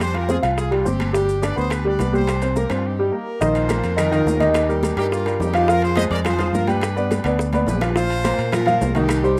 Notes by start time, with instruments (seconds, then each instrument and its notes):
Already playing: fingered electric bass F2
0.00 horn section G4 C5, high bongo, high conga, high timbale, claves, maracas
0.14 grand piano F4 F5, horn section G4 A#4, high bongo, high conga, high timbale
0.29 grand piano C4 C5, horn section F4 G#4, high bongo, high conga, maracas
0.42 fingered electric bass C2, grand piano F4 F5, high bongo, high timbale, claves, maracas
0.58 horn section F4 G#4, high bongo, high conga, maracas
0.71 grand piano G3 G4, horn section D4 F4, high conga, high timbale
0.85 fingered electric bass G1, grand piano C4 C5, horn section C4 G4, high bongo, low bongo, high conga, maracas
1.00 high bongo, high conga, high timbale, claves, maracas
1.13 grand piano G3 G4, horn section D4 G4, high bongo, high conga, maracas
1.29 high bongo, high conga, maracas
1.42 grand piano D4 D5, horn section B4 D5, high bongo, high conga, high timbale, claves, maracas
1.56 fingered electric bass D2, grand piano B3 B4, horn section G#4 C5, high bongo, maracas
1.70 horn section B4, high bongo, high conga, high timbale, claves, maracas
1.74 horn section G4
1.85 grand piano G3 G4, horn section B4 D5, high conga
1.99 fingered electric bass C2, grand piano B3 B4, high bongo, low bongo, high conga, high timbale, maracas
2.13 grand piano G3 G4, horn section G4 C5, high bongo, high conga, maracas
2.27 high bongo, high timbale, claves, maracas
2.42 grand piano C4 C5, high bongo, high timbale, maracas
2.56 grand piano A#3 A#4, horn section G4 A#4, high bongo, high conga, maracas
2.70 fingered electric bass G2, grand piano C4 C5, horn section D4 F4, high bongo, high conga, high timbale, claves, maracas
2.86 horn section D#4 G4
2.99 grand piano G3 G4
3.12 grand piano A#3 A#4, horn section G4
3.17 horn section A#4
3.40 fingered electric bass A#1, grand piano D#3 D#4 D#5, horn section F4, high bongo, high conga, maracas
3.45 horn section C5
3.55 high conga, high timbale, maracas
3.68 grand piano A#3 A#4, high bongo, high conga, high timbale, claves, maracas
3.84 fingered electric bass F2, high bongo, high conga, high timbale, maracas
3.97 grand piano D#3 D#4 D#5, horn section F4 A#4, high bongo, high conga, low conga, high timbale, claves, maracas
4.11 grand piano D#3 D#4 D#5, high bongo, high conga, high timbale, maracas
4.26 fingered electric bass D#2, high bongo, low bongo, high conga, low timbale, maracas
4.39 grand piano D#3 D#4 D#5, horn section D#4, high bongo, high conga, high timbale, maracas
4.44 horn section G4
4.54 high bongo, high conga, high timbale, claves, maracas
4.69 grand piano G3 G4 A#4, high conga, maracas
4.83 high bongo, high conga, high timbale, maracas
4.97 fingered electric bass G2, grand piano G3 G4 A#4, horn section D#4 G4, high bongo, high timbale, claves, maracas
5.12 horn section A#3 F4, high bongo, high conga, maracas
5.26 grand piano G3 G4 A#4, high bongo, high conga, high timbale, maracas
5.40 fingered electric bass F2, horn section D#4 G4, high bongo, low bongo, high conga, low timbale, maracas
5.54 grand piano F3 F4 F5, high bongo, high conga, high timbale, claves, maracas
5.68 grand piano F3 F4 F5, horn section F4 A#4, high bongo, high conga, maracas
5.82 horn section G#4 C5, high conga, high timbale, maracas
5.96 grand piano G#3 G#4 C5, horn section C5 D#5, high bongo, high conga, high timbale, claves, maracas
6.10 fingered electric bass F2, horn section A#4 D5, high bongo, high conga, high timbale, maracas
6.25 grand piano F3 F4 F5, horn section G#4 C5, high bongo, high conga, low conga, high timbale, claves, maracas
6.39 grand piano F3 F4 F5, high bongo, high conga, low conga, high timbale, maracas
6.53 fingered electric bass G2, horn section F4 A#4, high bongo, low bongo, high conga, maracas
6.67 grand piano G3 G4 G5, horn section G4 B4, high bongo, high conga, high timbale, maracas
6.81 high bongo, high conga, high timbale, claves, maracas
6.96 grand piano B3 B4 D5, high conga, maracas
7.11 high bongo, high conga, high timbale, maracas
7.24 fingered electric bass D2, grand piano B3 B4 D5, high bongo, high timbale, claves, maracas
7.39 high bongo, high conga, maracas
7.53 grand piano B3 B4 D5, high bongo, high conga, high timbale, maracas
7.66 fingered electric bass A#1, horn section G4 B4, high bongo, low bongo, low timbale, maracas
7.72 low conga
7.81 grand piano F3 F4 F5, high bongo, low conga, high timbale, claves, maracas
7.96 grand piano F3 F4 F5, horn section F4 C5, high bongo, high conga, maracas
8.10 high conga, high timbale, maracas
8.24 grand piano A#3 A#4 C5, high bongo, high conga, high timbale, claves, maracas
8.38 fingered electric bass A#2, high bongo, high conga, high timbale, maracas
8.52 grand piano F3 F4 F5, horn section F4 A#4, high bongo, high conga, low conga, high timbale, claves, maracas
8.66 grand piano F3 F4 F5, high bongo, high conga, low conga, high timbale, maracas
8.81 fingered electric bass C2, high bongo, low bongo, high conga, low timbale, maracas
8.95 grand piano D#3 D#4 D#5, horn section D#4 G4, high bongo, high conga, high timbale, maracas
9.09 high bongo, high conga, high timbale, claves, maracas
9.23 grand piano G3 G4 C5, high conga, maracas